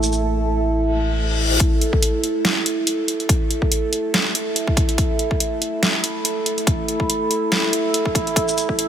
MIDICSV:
0, 0, Header, 1, 7, 480
1, 0, Start_track
1, 0, Tempo, 422535
1, 1821, Time_signature, 4, 2, 24, 8
1, 10091, End_track
2, 0, Start_track
2, 0, Title_t, "Synth drone"
2, 0, Program_c, 0, 95
2, 0, Note_on_c, 0, 57, 76
2, 0, Note_on_c, 0, 64, 70
2, 0, Note_on_c, 0, 69, 86
2, 1775, Note_off_c, 0, 69, 0
2, 1776, Note_off_c, 0, 57, 0
2, 1776, Note_off_c, 0, 64, 0
2, 1821, Note_on_c, 0, 64, 71
2, 1822, Note_on_c, 0, 57, 78
2, 1823, Note_on_c, 0, 69, 85
2, 9483, Note_off_c, 0, 69, 0
2, 9500, Note_on_c, 0, 74, 89
2, 10091, Note_off_c, 0, 57, 0
2, 10091, Note_off_c, 0, 64, 0
2, 10091, Note_off_c, 0, 74, 0
2, 10091, End_track
3, 0, Start_track
3, 0, Title_t, "Synth texture"
3, 0, Program_c, 1, 99
3, 0, Note_on_c, 1, 57, 86
3, 0, Note_on_c, 1, 69, 85
3, 1832, Note_off_c, 1, 57, 0
3, 1832, Note_off_c, 1, 69, 0
3, 10091, End_track
4, 0, Start_track
4, 0, Title_t, "Sub bass"
4, 0, Program_c, 2, 38
4, 0, Note_on_c, 2, 33, 88
4, 1799, Note_off_c, 2, 33, 0
4, 10091, End_track
5, 0, Start_track
5, 0, Title_t, "Reverse cymbal"
5, 0, Program_c, 3, 119
5, 863, Note_on_c, 3, 60, 73
5, 1822, Note_off_c, 3, 60, 0
5, 10091, End_track
6, 0, Start_track
6, 0, Title_t, "Riser"
6, 0, Program_c, 4, 103
6, 9502, Note_on_c, 4, 60, 78
6, 10091, Note_off_c, 4, 60, 0
6, 10091, End_track
7, 0, Start_track
7, 0, Title_t, "Drums"
7, 33, Note_on_c, 9, 82, 71
7, 141, Note_off_c, 9, 82, 0
7, 141, Note_on_c, 9, 82, 50
7, 255, Note_off_c, 9, 82, 0
7, 1818, Note_on_c, 9, 36, 117
7, 1821, Note_on_c, 9, 42, 79
7, 1932, Note_off_c, 9, 36, 0
7, 1934, Note_off_c, 9, 42, 0
7, 2062, Note_on_c, 9, 42, 52
7, 2175, Note_off_c, 9, 42, 0
7, 2191, Note_on_c, 9, 36, 61
7, 2301, Note_on_c, 9, 42, 81
7, 2305, Note_off_c, 9, 36, 0
7, 2414, Note_off_c, 9, 42, 0
7, 2539, Note_on_c, 9, 42, 53
7, 2653, Note_off_c, 9, 42, 0
7, 2780, Note_on_c, 9, 38, 116
7, 2780, Note_on_c, 9, 42, 53
7, 2894, Note_off_c, 9, 38, 0
7, 2894, Note_off_c, 9, 42, 0
7, 3022, Note_on_c, 9, 42, 76
7, 3135, Note_off_c, 9, 42, 0
7, 3260, Note_on_c, 9, 42, 82
7, 3374, Note_off_c, 9, 42, 0
7, 3501, Note_on_c, 9, 42, 64
7, 3615, Note_off_c, 9, 42, 0
7, 3635, Note_on_c, 9, 42, 38
7, 3739, Note_on_c, 9, 36, 127
7, 3742, Note_off_c, 9, 42, 0
7, 3742, Note_on_c, 9, 42, 82
7, 3852, Note_off_c, 9, 36, 0
7, 3856, Note_off_c, 9, 42, 0
7, 3982, Note_on_c, 9, 42, 52
7, 4096, Note_off_c, 9, 42, 0
7, 4111, Note_on_c, 9, 36, 62
7, 4221, Note_on_c, 9, 42, 80
7, 4225, Note_off_c, 9, 36, 0
7, 4335, Note_off_c, 9, 42, 0
7, 4460, Note_on_c, 9, 42, 56
7, 4574, Note_off_c, 9, 42, 0
7, 4703, Note_on_c, 9, 38, 122
7, 4703, Note_on_c, 9, 42, 53
7, 4817, Note_off_c, 9, 38, 0
7, 4817, Note_off_c, 9, 42, 0
7, 4942, Note_on_c, 9, 42, 78
7, 5055, Note_off_c, 9, 42, 0
7, 5180, Note_on_c, 9, 42, 78
7, 5294, Note_off_c, 9, 42, 0
7, 5310, Note_on_c, 9, 36, 64
7, 5418, Note_off_c, 9, 36, 0
7, 5418, Note_on_c, 9, 36, 108
7, 5420, Note_on_c, 9, 42, 64
7, 5531, Note_off_c, 9, 36, 0
7, 5534, Note_off_c, 9, 42, 0
7, 5552, Note_on_c, 9, 42, 38
7, 5658, Note_on_c, 9, 36, 127
7, 5659, Note_off_c, 9, 42, 0
7, 5659, Note_on_c, 9, 42, 79
7, 5771, Note_off_c, 9, 36, 0
7, 5773, Note_off_c, 9, 42, 0
7, 5898, Note_on_c, 9, 42, 51
7, 6012, Note_off_c, 9, 42, 0
7, 6030, Note_on_c, 9, 36, 65
7, 6139, Note_on_c, 9, 42, 78
7, 6144, Note_off_c, 9, 36, 0
7, 6252, Note_off_c, 9, 42, 0
7, 6380, Note_on_c, 9, 42, 56
7, 6494, Note_off_c, 9, 42, 0
7, 6619, Note_on_c, 9, 38, 115
7, 6619, Note_on_c, 9, 42, 53
7, 6733, Note_off_c, 9, 38, 0
7, 6733, Note_off_c, 9, 42, 0
7, 6858, Note_on_c, 9, 42, 79
7, 6972, Note_off_c, 9, 42, 0
7, 7099, Note_on_c, 9, 42, 82
7, 7213, Note_off_c, 9, 42, 0
7, 7340, Note_on_c, 9, 42, 63
7, 7454, Note_off_c, 9, 42, 0
7, 7474, Note_on_c, 9, 42, 38
7, 7577, Note_on_c, 9, 36, 127
7, 7580, Note_off_c, 9, 42, 0
7, 7580, Note_on_c, 9, 42, 78
7, 7690, Note_off_c, 9, 36, 0
7, 7693, Note_off_c, 9, 42, 0
7, 7821, Note_on_c, 9, 42, 49
7, 7934, Note_off_c, 9, 42, 0
7, 7950, Note_on_c, 9, 36, 64
7, 8061, Note_on_c, 9, 42, 74
7, 8063, Note_off_c, 9, 36, 0
7, 8175, Note_off_c, 9, 42, 0
7, 8301, Note_on_c, 9, 42, 51
7, 8414, Note_off_c, 9, 42, 0
7, 8541, Note_on_c, 9, 38, 123
7, 8541, Note_on_c, 9, 42, 52
7, 8654, Note_off_c, 9, 38, 0
7, 8654, Note_off_c, 9, 42, 0
7, 8782, Note_on_c, 9, 42, 77
7, 8895, Note_off_c, 9, 42, 0
7, 9022, Note_on_c, 9, 42, 76
7, 9135, Note_off_c, 9, 42, 0
7, 9150, Note_on_c, 9, 36, 64
7, 9258, Note_off_c, 9, 36, 0
7, 9258, Note_on_c, 9, 36, 101
7, 9264, Note_on_c, 9, 42, 62
7, 9372, Note_off_c, 9, 36, 0
7, 9378, Note_off_c, 9, 42, 0
7, 9396, Note_on_c, 9, 42, 36
7, 9498, Note_on_c, 9, 36, 124
7, 9504, Note_off_c, 9, 42, 0
7, 9504, Note_on_c, 9, 42, 79
7, 9612, Note_off_c, 9, 36, 0
7, 9618, Note_off_c, 9, 42, 0
7, 9636, Note_on_c, 9, 82, 77
7, 9743, Note_off_c, 9, 82, 0
7, 9743, Note_on_c, 9, 42, 48
7, 9743, Note_on_c, 9, 82, 51
7, 9857, Note_off_c, 9, 42, 0
7, 9857, Note_off_c, 9, 82, 0
7, 9871, Note_on_c, 9, 36, 63
7, 9982, Note_on_c, 9, 42, 76
7, 9985, Note_off_c, 9, 36, 0
7, 10091, Note_off_c, 9, 42, 0
7, 10091, End_track
0, 0, End_of_file